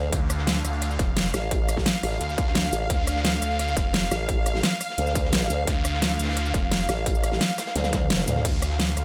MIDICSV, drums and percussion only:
0, 0, Header, 1, 2, 480
1, 0, Start_track
1, 0, Key_signature, -1, "minor"
1, 0, Tempo, 346821
1, 173, Time_signature, 4, 2, 24, 8
1, 12520, End_track
2, 0, Start_track
2, 0, Title_t, "Drums"
2, 172, Note_on_c, 9, 42, 85
2, 173, Note_on_c, 9, 36, 127
2, 174, Note_off_c, 9, 42, 0
2, 174, Note_on_c, 9, 42, 92
2, 311, Note_off_c, 9, 36, 0
2, 312, Note_off_c, 9, 42, 0
2, 408, Note_on_c, 9, 42, 71
2, 414, Note_off_c, 9, 42, 0
2, 414, Note_on_c, 9, 37, 49
2, 414, Note_on_c, 9, 42, 64
2, 414, Note_on_c, 9, 69, 58
2, 527, Note_on_c, 9, 38, 56
2, 552, Note_off_c, 9, 37, 0
2, 552, Note_off_c, 9, 42, 0
2, 552, Note_off_c, 9, 69, 0
2, 648, Note_off_c, 9, 38, 0
2, 648, Note_on_c, 9, 38, 117
2, 654, Note_off_c, 9, 38, 0
2, 654, Note_on_c, 9, 38, 127
2, 654, Note_on_c, 9, 42, 91
2, 662, Note_off_c, 9, 42, 0
2, 662, Note_on_c, 9, 42, 84
2, 774, Note_on_c, 9, 69, 26
2, 792, Note_off_c, 9, 38, 0
2, 801, Note_off_c, 9, 42, 0
2, 894, Note_off_c, 9, 69, 0
2, 894, Note_on_c, 9, 37, 34
2, 894, Note_on_c, 9, 42, 65
2, 894, Note_on_c, 9, 69, 60
2, 1007, Note_off_c, 9, 42, 0
2, 1007, Note_on_c, 9, 42, 46
2, 1033, Note_off_c, 9, 37, 0
2, 1033, Note_off_c, 9, 69, 0
2, 1127, Note_off_c, 9, 42, 0
2, 1127, Note_on_c, 9, 42, 91
2, 1134, Note_off_c, 9, 42, 0
2, 1134, Note_on_c, 9, 37, 31
2, 1134, Note_on_c, 9, 42, 89
2, 1242, Note_on_c, 9, 38, 45
2, 1254, Note_on_c, 9, 69, 27
2, 1272, Note_off_c, 9, 37, 0
2, 1272, Note_off_c, 9, 42, 0
2, 1370, Note_off_c, 9, 38, 0
2, 1370, Note_on_c, 9, 38, 36
2, 1370, Note_on_c, 9, 42, 65
2, 1373, Note_on_c, 9, 36, 116
2, 1374, Note_off_c, 9, 42, 0
2, 1374, Note_off_c, 9, 69, 0
2, 1374, Note_on_c, 9, 42, 63
2, 1374, Note_on_c, 9, 69, 55
2, 1509, Note_off_c, 9, 38, 0
2, 1512, Note_off_c, 9, 36, 0
2, 1512, Note_off_c, 9, 42, 0
2, 1512, Note_off_c, 9, 69, 0
2, 1608, Note_on_c, 9, 42, 88
2, 1614, Note_off_c, 9, 42, 0
2, 1614, Note_on_c, 9, 38, 120
2, 1614, Note_on_c, 9, 42, 90
2, 1618, Note_off_c, 9, 38, 0
2, 1618, Note_on_c, 9, 38, 118
2, 1734, Note_on_c, 9, 69, 26
2, 1752, Note_off_c, 9, 42, 0
2, 1756, Note_off_c, 9, 38, 0
2, 1852, Note_on_c, 9, 42, 75
2, 1854, Note_off_c, 9, 42, 0
2, 1854, Note_off_c, 9, 69, 0
2, 1854, Note_on_c, 9, 37, 58
2, 1854, Note_on_c, 9, 38, 40
2, 1854, Note_on_c, 9, 42, 65
2, 1854, Note_on_c, 9, 69, 56
2, 1992, Note_off_c, 9, 37, 0
2, 1992, Note_off_c, 9, 38, 0
2, 1992, Note_off_c, 9, 42, 0
2, 1992, Note_off_c, 9, 69, 0
2, 2091, Note_on_c, 9, 42, 90
2, 2093, Note_off_c, 9, 42, 0
2, 2093, Note_on_c, 9, 42, 91
2, 2094, Note_on_c, 9, 36, 124
2, 2232, Note_off_c, 9, 36, 0
2, 2232, Note_off_c, 9, 42, 0
2, 2334, Note_on_c, 9, 37, 49
2, 2334, Note_on_c, 9, 42, 62
2, 2334, Note_on_c, 9, 69, 56
2, 2339, Note_off_c, 9, 42, 0
2, 2339, Note_on_c, 9, 42, 66
2, 2453, Note_on_c, 9, 36, 62
2, 2454, Note_on_c, 9, 38, 36
2, 2460, Note_off_c, 9, 38, 0
2, 2460, Note_on_c, 9, 38, 50
2, 2472, Note_off_c, 9, 37, 0
2, 2472, Note_off_c, 9, 69, 0
2, 2477, Note_off_c, 9, 42, 0
2, 2568, Note_off_c, 9, 38, 0
2, 2568, Note_on_c, 9, 38, 111
2, 2574, Note_off_c, 9, 38, 0
2, 2574, Note_on_c, 9, 38, 127
2, 2574, Note_on_c, 9, 42, 88
2, 2576, Note_off_c, 9, 42, 0
2, 2576, Note_on_c, 9, 42, 85
2, 2592, Note_off_c, 9, 36, 0
2, 2695, Note_on_c, 9, 69, 29
2, 2713, Note_off_c, 9, 38, 0
2, 2714, Note_off_c, 9, 42, 0
2, 2814, Note_off_c, 9, 69, 0
2, 2814, Note_on_c, 9, 37, 34
2, 2814, Note_on_c, 9, 46, 79
2, 2814, Note_on_c, 9, 69, 58
2, 2829, Note_off_c, 9, 46, 0
2, 2829, Note_on_c, 9, 46, 81
2, 2936, Note_on_c, 9, 38, 44
2, 2953, Note_off_c, 9, 37, 0
2, 2953, Note_off_c, 9, 69, 0
2, 2968, Note_off_c, 9, 46, 0
2, 3054, Note_on_c, 9, 42, 85
2, 3061, Note_off_c, 9, 42, 0
2, 3061, Note_on_c, 9, 42, 91
2, 3075, Note_off_c, 9, 38, 0
2, 3174, Note_on_c, 9, 69, 28
2, 3181, Note_on_c, 9, 38, 48
2, 3200, Note_off_c, 9, 42, 0
2, 3293, Note_on_c, 9, 36, 116
2, 3294, Note_off_c, 9, 69, 0
2, 3294, Note_on_c, 9, 42, 60
2, 3294, Note_on_c, 9, 69, 55
2, 3296, Note_off_c, 9, 42, 0
2, 3296, Note_on_c, 9, 42, 63
2, 3319, Note_off_c, 9, 38, 0
2, 3416, Note_on_c, 9, 38, 47
2, 3432, Note_off_c, 9, 36, 0
2, 3432, Note_off_c, 9, 69, 0
2, 3434, Note_off_c, 9, 42, 0
2, 3524, Note_off_c, 9, 38, 0
2, 3524, Note_on_c, 9, 38, 113
2, 3533, Note_off_c, 9, 38, 0
2, 3533, Note_on_c, 9, 38, 122
2, 3533, Note_on_c, 9, 42, 84
2, 3534, Note_off_c, 9, 42, 0
2, 3534, Note_on_c, 9, 42, 90
2, 3654, Note_on_c, 9, 69, 27
2, 3672, Note_off_c, 9, 38, 0
2, 3672, Note_off_c, 9, 42, 0
2, 3774, Note_off_c, 9, 69, 0
2, 3774, Note_on_c, 9, 42, 61
2, 3774, Note_on_c, 9, 69, 61
2, 3778, Note_off_c, 9, 42, 0
2, 3778, Note_on_c, 9, 42, 68
2, 3913, Note_off_c, 9, 69, 0
2, 3916, Note_off_c, 9, 42, 0
2, 4008, Note_on_c, 9, 42, 94
2, 4013, Note_on_c, 9, 36, 124
2, 4014, Note_off_c, 9, 42, 0
2, 4014, Note_on_c, 9, 42, 91
2, 4151, Note_off_c, 9, 36, 0
2, 4152, Note_off_c, 9, 42, 0
2, 4254, Note_on_c, 9, 37, 49
2, 4254, Note_on_c, 9, 42, 62
2, 4254, Note_on_c, 9, 69, 61
2, 4265, Note_off_c, 9, 42, 0
2, 4265, Note_on_c, 9, 42, 63
2, 4375, Note_on_c, 9, 38, 62
2, 4392, Note_off_c, 9, 37, 0
2, 4392, Note_off_c, 9, 69, 0
2, 4404, Note_off_c, 9, 42, 0
2, 4484, Note_on_c, 9, 42, 82
2, 4494, Note_off_c, 9, 38, 0
2, 4494, Note_off_c, 9, 42, 0
2, 4494, Note_on_c, 9, 38, 125
2, 4494, Note_on_c, 9, 42, 89
2, 4497, Note_off_c, 9, 38, 0
2, 4497, Note_on_c, 9, 38, 124
2, 4614, Note_on_c, 9, 69, 30
2, 4632, Note_off_c, 9, 42, 0
2, 4636, Note_off_c, 9, 38, 0
2, 4734, Note_off_c, 9, 69, 0
2, 4734, Note_on_c, 9, 37, 31
2, 4734, Note_on_c, 9, 42, 72
2, 4734, Note_on_c, 9, 69, 57
2, 4854, Note_off_c, 9, 42, 0
2, 4854, Note_on_c, 9, 42, 48
2, 4872, Note_off_c, 9, 37, 0
2, 4872, Note_off_c, 9, 69, 0
2, 4972, Note_off_c, 9, 42, 0
2, 4972, Note_on_c, 9, 42, 100
2, 4974, Note_off_c, 9, 42, 0
2, 4974, Note_on_c, 9, 37, 31
2, 4974, Note_on_c, 9, 42, 87
2, 5089, Note_on_c, 9, 38, 49
2, 5094, Note_on_c, 9, 69, 28
2, 5112, Note_off_c, 9, 37, 0
2, 5112, Note_off_c, 9, 42, 0
2, 5212, Note_off_c, 9, 38, 0
2, 5212, Note_on_c, 9, 38, 37
2, 5213, Note_off_c, 9, 69, 0
2, 5213, Note_on_c, 9, 36, 105
2, 5213, Note_on_c, 9, 42, 62
2, 5213, Note_on_c, 9, 69, 59
2, 5221, Note_off_c, 9, 42, 0
2, 5221, Note_on_c, 9, 42, 65
2, 5351, Note_off_c, 9, 36, 0
2, 5351, Note_off_c, 9, 38, 0
2, 5352, Note_off_c, 9, 69, 0
2, 5359, Note_off_c, 9, 42, 0
2, 5445, Note_on_c, 9, 38, 105
2, 5450, Note_on_c, 9, 42, 88
2, 5453, Note_off_c, 9, 38, 0
2, 5453, Note_off_c, 9, 42, 0
2, 5453, Note_on_c, 9, 38, 118
2, 5453, Note_on_c, 9, 42, 85
2, 5574, Note_on_c, 9, 69, 27
2, 5592, Note_off_c, 9, 38, 0
2, 5592, Note_off_c, 9, 42, 0
2, 5694, Note_off_c, 9, 69, 0
2, 5694, Note_on_c, 9, 37, 50
2, 5694, Note_on_c, 9, 38, 36
2, 5694, Note_on_c, 9, 42, 62
2, 5694, Note_on_c, 9, 69, 62
2, 5702, Note_off_c, 9, 42, 0
2, 5702, Note_on_c, 9, 42, 64
2, 5832, Note_off_c, 9, 37, 0
2, 5832, Note_off_c, 9, 38, 0
2, 5832, Note_off_c, 9, 69, 0
2, 5841, Note_off_c, 9, 42, 0
2, 5926, Note_on_c, 9, 42, 84
2, 5933, Note_on_c, 9, 36, 118
2, 5934, Note_off_c, 9, 42, 0
2, 5934, Note_on_c, 9, 42, 91
2, 6071, Note_off_c, 9, 36, 0
2, 6072, Note_off_c, 9, 42, 0
2, 6170, Note_on_c, 9, 42, 69
2, 6174, Note_off_c, 9, 42, 0
2, 6174, Note_on_c, 9, 37, 46
2, 6174, Note_on_c, 9, 42, 69
2, 6174, Note_on_c, 9, 69, 62
2, 6294, Note_on_c, 9, 38, 35
2, 6298, Note_off_c, 9, 38, 0
2, 6298, Note_on_c, 9, 38, 56
2, 6312, Note_off_c, 9, 37, 0
2, 6312, Note_off_c, 9, 42, 0
2, 6312, Note_off_c, 9, 69, 0
2, 6412, Note_off_c, 9, 38, 0
2, 6412, Note_on_c, 9, 38, 116
2, 6413, Note_off_c, 9, 38, 0
2, 6413, Note_on_c, 9, 38, 116
2, 6413, Note_on_c, 9, 42, 95
2, 6416, Note_off_c, 9, 42, 0
2, 6416, Note_on_c, 9, 42, 89
2, 6534, Note_on_c, 9, 69, 28
2, 6552, Note_off_c, 9, 38, 0
2, 6555, Note_off_c, 9, 42, 0
2, 6653, Note_off_c, 9, 69, 0
2, 6653, Note_on_c, 9, 37, 31
2, 6653, Note_on_c, 9, 46, 76
2, 6653, Note_on_c, 9, 69, 62
2, 6783, Note_on_c, 9, 38, 49
2, 6792, Note_off_c, 9, 37, 0
2, 6792, Note_off_c, 9, 46, 0
2, 6792, Note_off_c, 9, 69, 0
2, 6887, Note_on_c, 9, 42, 86
2, 6893, Note_off_c, 9, 42, 0
2, 6893, Note_on_c, 9, 42, 88
2, 6921, Note_off_c, 9, 38, 0
2, 7013, Note_on_c, 9, 69, 30
2, 7022, Note_on_c, 9, 38, 48
2, 7031, Note_off_c, 9, 42, 0
2, 7133, Note_on_c, 9, 36, 106
2, 7134, Note_off_c, 9, 69, 0
2, 7134, Note_on_c, 9, 42, 66
2, 7134, Note_on_c, 9, 69, 59
2, 7145, Note_off_c, 9, 42, 0
2, 7145, Note_on_c, 9, 42, 72
2, 7161, Note_off_c, 9, 38, 0
2, 7262, Note_on_c, 9, 38, 46
2, 7271, Note_off_c, 9, 36, 0
2, 7272, Note_off_c, 9, 69, 0
2, 7284, Note_off_c, 9, 42, 0
2, 7366, Note_on_c, 9, 42, 92
2, 7374, Note_off_c, 9, 38, 0
2, 7374, Note_off_c, 9, 42, 0
2, 7374, Note_on_c, 9, 38, 118
2, 7374, Note_on_c, 9, 42, 90
2, 7377, Note_off_c, 9, 38, 0
2, 7377, Note_on_c, 9, 38, 114
2, 7493, Note_on_c, 9, 69, 29
2, 7512, Note_off_c, 9, 42, 0
2, 7515, Note_off_c, 9, 38, 0
2, 7611, Note_on_c, 9, 42, 71
2, 7613, Note_off_c, 9, 42, 0
2, 7613, Note_off_c, 9, 69, 0
2, 7613, Note_on_c, 9, 42, 66
2, 7613, Note_on_c, 9, 69, 62
2, 7751, Note_off_c, 9, 42, 0
2, 7751, Note_off_c, 9, 69, 0
2, 7853, Note_on_c, 9, 36, 118
2, 7854, Note_on_c, 9, 42, 95
2, 7855, Note_off_c, 9, 42, 0
2, 7855, Note_on_c, 9, 42, 95
2, 7991, Note_off_c, 9, 36, 0
2, 7993, Note_off_c, 9, 42, 0
2, 8091, Note_on_c, 9, 42, 70
2, 8094, Note_off_c, 9, 42, 0
2, 8094, Note_on_c, 9, 37, 46
2, 8094, Note_on_c, 9, 42, 67
2, 8094, Note_on_c, 9, 69, 63
2, 8224, Note_on_c, 9, 38, 63
2, 8232, Note_off_c, 9, 37, 0
2, 8232, Note_off_c, 9, 42, 0
2, 8232, Note_off_c, 9, 69, 0
2, 8333, Note_off_c, 9, 38, 0
2, 8333, Note_on_c, 9, 38, 113
2, 8334, Note_off_c, 9, 38, 0
2, 8334, Note_on_c, 9, 38, 122
2, 8334, Note_on_c, 9, 42, 97
2, 8338, Note_off_c, 9, 42, 0
2, 8338, Note_on_c, 9, 42, 91
2, 8453, Note_on_c, 9, 69, 30
2, 8472, Note_off_c, 9, 38, 0
2, 8477, Note_off_c, 9, 42, 0
2, 8573, Note_off_c, 9, 69, 0
2, 8573, Note_on_c, 9, 42, 67
2, 8573, Note_on_c, 9, 69, 63
2, 8575, Note_off_c, 9, 42, 0
2, 8575, Note_on_c, 9, 42, 76
2, 8626, Note_off_c, 9, 42, 0
2, 8626, Note_on_c, 9, 42, 68
2, 8635, Note_on_c, 9, 38, 101
2, 8699, Note_off_c, 9, 38, 0
2, 8699, Note_on_c, 9, 38, 96
2, 8705, Note_off_c, 9, 42, 0
2, 8705, Note_on_c, 9, 42, 70
2, 8712, Note_off_c, 9, 69, 0
2, 8754, Note_off_c, 9, 42, 0
2, 8754, Note_on_c, 9, 42, 68
2, 8763, Note_off_c, 9, 38, 0
2, 8763, Note_on_c, 9, 38, 94
2, 8813, Note_off_c, 9, 42, 0
2, 8813, Note_on_c, 9, 37, 30
2, 8813, Note_on_c, 9, 42, 91
2, 8901, Note_off_c, 9, 38, 0
2, 8930, Note_on_c, 9, 38, 43
2, 8933, Note_on_c, 9, 69, 31
2, 8952, Note_off_c, 9, 37, 0
2, 8952, Note_off_c, 9, 42, 0
2, 9050, Note_on_c, 9, 42, 70
2, 9053, Note_off_c, 9, 38, 0
2, 9053, Note_off_c, 9, 42, 0
2, 9053, Note_off_c, 9, 69, 0
2, 9053, Note_on_c, 9, 36, 104
2, 9053, Note_on_c, 9, 38, 38
2, 9053, Note_on_c, 9, 42, 65
2, 9053, Note_on_c, 9, 69, 64
2, 9191, Note_off_c, 9, 36, 0
2, 9192, Note_off_c, 9, 38, 0
2, 9192, Note_off_c, 9, 42, 0
2, 9192, Note_off_c, 9, 69, 0
2, 9291, Note_on_c, 9, 38, 120
2, 9292, Note_on_c, 9, 42, 97
2, 9294, Note_off_c, 9, 38, 0
2, 9294, Note_off_c, 9, 42, 0
2, 9294, Note_on_c, 9, 38, 112
2, 9294, Note_on_c, 9, 42, 93
2, 9414, Note_on_c, 9, 69, 29
2, 9432, Note_off_c, 9, 38, 0
2, 9432, Note_off_c, 9, 42, 0
2, 9529, Note_on_c, 9, 42, 69
2, 9534, Note_off_c, 9, 42, 0
2, 9534, Note_off_c, 9, 69, 0
2, 9534, Note_on_c, 9, 37, 54
2, 9534, Note_on_c, 9, 38, 35
2, 9534, Note_on_c, 9, 42, 68
2, 9534, Note_on_c, 9, 69, 64
2, 9672, Note_off_c, 9, 37, 0
2, 9672, Note_off_c, 9, 38, 0
2, 9672, Note_off_c, 9, 42, 0
2, 9672, Note_off_c, 9, 69, 0
2, 9773, Note_on_c, 9, 36, 112
2, 9774, Note_on_c, 9, 42, 99
2, 9783, Note_off_c, 9, 42, 0
2, 9783, Note_on_c, 9, 42, 83
2, 9894, Note_on_c, 9, 69, 29
2, 9911, Note_off_c, 9, 36, 0
2, 9922, Note_off_c, 9, 42, 0
2, 10014, Note_off_c, 9, 69, 0
2, 10014, Note_on_c, 9, 37, 49
2, 10014, Note_on_c, 9, 42, 68
2, 10014, Note_on_c, 9, 69, 65
2, 10016, Note_off_c, 9, 42, 0
2, 10016, Note_on_c, 9, 42, 69
2, 10132, Note_on_c, 9, 38, 54
2, 10134, Note_off_c, 9, 38, 0
2, 10134, Note_on_c, 9, 38, 35
2, 10153, Note_off_c, 9, 37, 0
2, 10153, Note_off_c, 9, 69, 0
2, 10154, Note_off_c, 9, 42, 0
2, 10246, Note_off_c, 9, 38, 0
2, 10246, Note_on_c, 9, 38, 110
2, 10254, Note_off_c, 9, 38, 0
2, 10254, Note_on_c, 9, 38, 119
2, 10254, Note_on_c, 9, 42, 99
2, 10256, Note_off_c, 9, 42, 0
2, 10256, Note_on_c, 9, 42, 85
2, 10374, Note_on_c, 9, 69, 30
2, 10392, Note_off_c, 9, 38, 0
2, 10395, Note_off_c, 9, 42, 0
2, 10487, Note_on_c, 9, 42, 81
2, 10492, Note_on_c, 9, 38, 125
2, 10494, Note_off_c, 9, 69, 0
2, 10494, Note_on_c, 9, 37, 36
2, 10494, Note_on_c, 9, 46, 76
2, 10494, Note_on_c, 9, 69, 61
2, 10609, Note_off_c, 9, 42, 0
2, 10609, Note_on_c, 9, 42, 76
2, 10620, Note_off_c, 9, 38, 0
2, 10620, Note_on_c, 9, 38, 109
2, 10632, Note_off_c, 9, 37, 0
2, 10632, Note_off_c, 9, 46, 0
2, 10632, Note_off_c, 9, 69, 0
2, 10734, Note_off_c, 9, 42, 0
2, 10734, Note_on_c, 9, 42, 89
2, 10734, Note_on_c, 9, 48, 62
2, 10736, Note_off_c, 9, 38, 0
2, 10736, Note_off_c, 9, 42, 0
2, 10736, Note_on_c, 9, 38, 111
2, 10736, Note_on_c, 9, 42, 83
2, 10850, Note_off_c, 9, 42, 0
2, 10850, Note_on_c, 9, 42, 77
2, 10851, Note_off_c, 9, 38, 0
2, 10851, Note_on_c, 9, 38, 115
2, 10854, Note_off_c, 9, 48, 0
2, 10854, Note_on_c, 9, 48, 59
2, 10854, Note_on_c, 9, 69, 30
2, 10970, Note_off_c, 9, 38, 0
2, 10970, Note_on_c, 9, 38, 90
2, 10973, Note_off_c, 9, 42, 0
2, 10973, Note_off_c, 9, 48, 0
2, 10973, Note_off_c, 9, 69, 0
2, 10973, Note_on_c, 9, 36, 104
2, 10973, Note_on_c, 9, 42, 67
2, 10973, Note_on_c, 9, 48, 75
2, 10973, Note_on_c, 9, 69, 60
2, 11094, Note_on_c, 9, 47, 71
2, 11108, Note_off_c, 9, 38, 0
2, 11111, Note_off_c, 9, 36, 0
2, 11112, Note_off_c, 9, 42, 0
2, 11112, Note_off_c, 9, 48, 0
2, 11112, Note_off_c, 9, 69, 0
2, 11207, Note_on_c, 9, 42, 64
2, 11214, Note_off_c, 9, 42, 0
2, 11214, Note_off_c, 9, 47, 0
2, 11214, Note_on_c, 9, 38, 115
2, 11214, Note_on_c, 9, 42, 91
2, 11214, Note_on_c, 9, 47, 81
2, 11335, Note_off_c, 9, 47, 0
2, 11335, Note_on_c, 9, 47, 79
2, 11335, Note_on_c, 9, 69, 29
2, 11338, Note_off_c, 9, 42, 0
2, 11338, Note_on_c, 9, 42, 43
2, 11352, Note_off_c, 9, 38, 0
2, 11454, Note_off_c, 9, 42, 0
2, 11454, Note_off_c, 9, 69, 0
2, 11454, Note_on_c, 9, 42, 70
2, 11454, Note_on_c, 9, 45, 99
2, 11454, Note_on_c, 9, 69, 62
2, 11462, Note_off_c, 9, 42, 0
2, 11462, Note_on_c, 9, 42, 74
2, 11473, Note_off_c, 9, 47, 0
2, 11572, Note_on_c, 9, 38, 42
2, 11573, Note_off_c, 9, 45, 0
2, 11573, Note_on_c, 9, 45, 82
2, 11592, Note_off_c, 9, 69, 0
2, 11600, Note_off_c, 9, 42, 0
2, 11693, Note_on_c, 9, 36, 124
2, 11694, Note_on_c, 9, 42, 97
2, 11694, Note_on_c, 9, 49, 76
2, 11701, Note_off_c, 9, 42, 0
2, 11701, Note_on_c, 9, 42, 85
2, 11711, Note_off_c, 9, 38, 0
2, 11712, Note_off_c, 9, 45, 0
2, 11832, Note_off_c, 9, 36, 0
2, 11832, Note_off_c, 9, 49, 0
2, 11840, Note_off_c, 9, 42, 0
2, 11934, Note_on_c, 9, 37, 52
2, 11934, Note_on_c, 9, 42, 69
2, 11934, Note_on_c, 9, 69, 58
2, 11939, Note_off_c, 9, 42, 0
2, 11939, Note_on_c, 9, 42, 71
2, 12045, Note_on_c, 9, 38, 56
2, 12073, Note_off_c, 9, 37, 0
2, 12073, Note_off_c, 9, 69, 0
2, 12077, Note_off_c, 9, 42, 0
2, 12166, Note_off_c, 9, 38, 0
2, 12166, Note_on_c, 9, 38, 118
2, 12173, Note_on_c, 9, 42, 84
2, 12174, Note_off_c, 9, 38, 0
2, 12174, Note_off_c, 9, 42, 0
2, 12174, Note_on_c, 9, 38, 121
2, 12174, Note_on_c, 9, 42, 100
2, 12294, Note_on_c, 9, 69, 29
2, 12312, Note_off_c, 9, 38, 0
2, 12312, Note_off_c, 9, 42, 0
2, 12403, Note_on_c, 9, 42, 76
2, 12414, Note_off_c, 9, 42, 0
2, 12414, Note_off_c, 9, 69, 0
2, 12414, Note_on_c, 9, 37, 36
2, 12414, Note_on_c, 9, 42, 69
2, 12414, Note_on_c, 9, 69, 60
2, 12520, Note_off_c, 9, 37, 0
2, 12520, Note_off_c, 9, 42, 0
2, 12520, Note_off_c, 9, 69, 0
2, 12520, End_track
0, 0, End_of_file